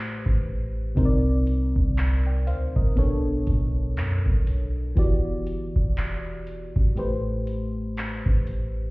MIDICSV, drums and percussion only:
0, 0, Header, 1, 2, 480
1, 0, Start_track
1, 0, Key_signature, 1, "minor"
1, 0, Tempo, 1000000
1, 466, Time_signature, 4, 2, 24, 8
1, 4275, End_track
2, 0, Start_track
2, 0, Title_t, "Drums"
2, 126, Note_on_c, 9, 36, 87
2, 174, Note_off_c, 9, 36, 0
2, 466, Note_on_c, 9, 36, 112
2, 466, Note_on_c, 9, 42, 63
2, 514, Note_off_c, 9, 36, 0
2, 514, Note_off_c, 9, 42, 0
2, 705, Note_on_c, 9, 42, 62
2, 753, Note_off_c, 9, 42, 0
2, 845, Note_on_c, 9, 36, 84
2, 893, Note_off_c, 9, 36, 0
2, 948, Note_on_c, 9, 42, 77
2, 951, Note_on_c, 9, 39, 108
2, 996, Note_off_c, 9, 42, 0
2, 999, Note_off_c, 9, 39, 0
2, 1187, Note_on_c, 9, 42, 66
2, 1235, Note_off_c, 9, 42, 0
2, 1325, Note_on_c, 9, 36, 92
2, 1373, Note_off_c, 9, 36, 0
2, 1425, Note_on_c, 9, 36, 81
2, 1425, Note_on_c, 9, 42, 62
2, 1473, Note_off_c, 9, 36, 0
2, 1473, Note_off_c, 9, 42, 0
2, 1665, Note_on_c, 9, 42, 56
2, 1667, Note_on_c, 9, 36, 81
2, 1713, Note_off_c, 9, 42, 0
2, 1715, Note_off_c, 9, 36, 0
2, 1906, Note_on_c, 9, 42, 73
2, 1911, Note_on_c, 9, 39, 111
2, 1954, Note_off_c, 9, 42, 0
2, 1959, Note_off_c, 9, 39, 0
2, 2045, Note_on_c, 9, 36, 92
2, 2093, Note_off_c, 9, 36, 0
2, 2146, Note_on_c, 9, 42, 64
2, 2194, Note_off_c, 9, 42, 0
2, 2385, Note_on_c, 9, 36, 116
2, 2385, Note_on_c, 9, 42, 62
2, 2433, Note_off_c, 9, 36, 0
2, 2433, Note_off_c, 9, 42, 0
2, 2624, Note_on_c, 9, 42, 63
2, 2672, Note_off_c, 9, 42, 0
2, 2765, Note_on_c, 9, 36, 84
2, 2813, Note_off_c, 9, 36, 0
2, 2866, Note_on_c, 9, 42, 78
2, 2869, Note_on_c, 9, 39, 100
2, 2914, Note_off_c, 9, 42, 0
2, 2917, Note_off_c, 9, 39, 0
2, 3105, Note_on_c, 9, 42, 65
2, 3153, Note_off_c, 9, 42, 0
2, 3245, Note_on_c, 9, 36, 88
2, 3293, Note_off_c, 9, 36, 0
2, 3345, Note_on_c, 9, 42, 60
2, 3393, Note_off_c, 9, 42, 0
2, 3586, Note_on_c, 9, 42, 56
2, 3634, Note_off_c, 9, 42, 0
2, 3826, Note_on_c, 9, 42, 77
2, 3831, Note_on_c, 9, 39, 109
2, 3874, Note_off_c, 9, 42, 0
2, 3879, Note_off_c, 9, 39, 0
2, 3965, Note_on_c, 9, 36, 87
2, 4013, Note_off_c, 9, 36, 0
2, 4065, Note_on_c, 9, 42, 63
2, 4113, Note_off_c, 9, 42, 0
2, 4275, End_track
0, 0, End_of_file